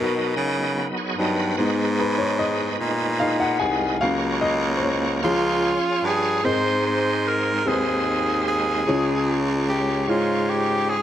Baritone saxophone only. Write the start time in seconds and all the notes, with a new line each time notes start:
Already playing: B2
0.36 C#3
1.17 G2
1.57 G#2
2.79 A#2
3.60 C2
4.00 C#2
5.22 C#2
6.03 G2
6.43 G#2
7.65 D#2
8.86 C#2
10.08 G#2